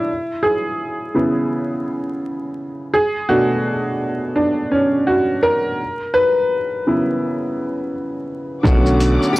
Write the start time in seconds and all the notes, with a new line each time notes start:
Already playing: D4 E4
0.43 G#4
1.14 C#3 B3 E4
2.94 G#4
3.29 B2 A3 D4 F#4
4.36 D4
4.71 C#4
5.07 F#4
5.43 A#4
6.14 B4
6.87 C#3 B3 E4
8.63 B1 D3 F#3 A3 B3 C#4 F#4 F#5 D6, kick, shaker
8.86 shaker
9.00 closed hi-hat, shaker
9.23 shaker
9.33 G4, tambourine